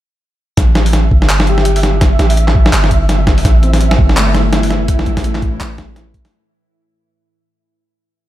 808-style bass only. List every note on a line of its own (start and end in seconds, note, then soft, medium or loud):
0.57 1.10 A1 loud
1.11 2.18 G1 loud
2.19 2.72 A1 loud
2.73 3.44 G1 loud
3.45 3.98 A1 loud
3.99 5.05 G1 medium
5.07 5.59 A1 loud
5.60 6.31 A1 loud